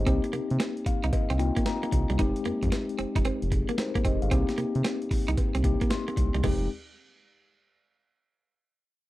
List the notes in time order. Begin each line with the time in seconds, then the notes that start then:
Already playing: D#5
0.06 C2 A#3 C4 D#4 G4, kick, closed hi-hat, cowbell
0.24 muted clean electric guitar stroke, closed hi-hat
0.33 C3 A#3, closed hi-hat
0.50 C3, closed hi-hat
0.60 C4, snare, closed hi-hat, cowbell
0.77 closed hi-hat
0.86 C2 F5, muted clean electric guitar stroke, kick, closed hi-hat
1.04 C2 D#4, closed hi-hat
1.13 C2 D#5, kick, closed hi-hat, cowbell
1.30 C2 C4, closed hi-hat
1.39 A#3 C4 D#4 F4 G5, muted clean electric guitar stroke, closed hi-hat
1.56 A#3, kick, closed hi-hat
1.66 A#5, snare, closed hi-hat, cowbell
1.83 A#3, closed hi-hat
1.92 C2, muted clean electric guitar stroke, kick, closed hi-hat
2.10 C2 G3, closed hi-hat
2.18 F1 G#3 C4 D#4 G4, kick, closed hi-hat, cowbell
2.36 closed hi-hat
2.45 F2 A#3, closed hi-hat
2.63 F2, muted clean electric guitar stroke, kick, closed hi-hat
2.72 muted clean electric guitar stroke, snare, closed hi-hat, cowbell
2.89 closed hi-hat
2.99 F1 C4, closed hi-hat
3.16 F1 D#4, kick, closed hi-hat
3.25 F1 C4, closed hi-hat, cowbell
3.42 F1, closed hi-hat
3.52 C4 G#4, muted clean electric guitar stroke, kick, closed hi-hat
3.69 A#3 A#4, closed hi-hat
3.78 D#4 C5, muted clean electric guitar stroke, snare, closed hi-hat, cowbell
3.95 A#3, kick, closed hi-hat
4.05 F1 C4 G4 D#5, kick, closed hi-hat
4.22 G1 G#4 F5, closed hi-hat
4.31 C2 A#3 C4 D#4 G4, kick, closed hi-hat, cowbell
4.49 muted clean electric guitar stroke, snare, closed hi-hat
4.58 C3 A#3, closed hi-hat
4.75 C3, closed hi-hat
4.84 C4, snare, closed hi-hat, cowbell
5.02 closed hi-hat
5.11 C2, muted clean electric guitar stroke, kick, open hi-hat
5.28 C2 D#4, closed hi-hat
5.37 C2, kick, closed hi-hat, cowbell
5.55 C2 C4, closed hi-hat
5.64 A#3 C4 D#4 G4, muted clean electric guitar stroke, kick, closed hi-hat
5.81 A#3, kick, closed hi-hat
5.90 C6, snare, closed hi-hat, cowbell
6.08 A#3, closed hi-hat
6.17 C2, muted clean electric guitar stroke, kick, closed hi-hat
6.34 C2 G3, closed hi-hat
6.44 F1 G#3 C4 D#4 G4, kick, floor tom, cowbell, crash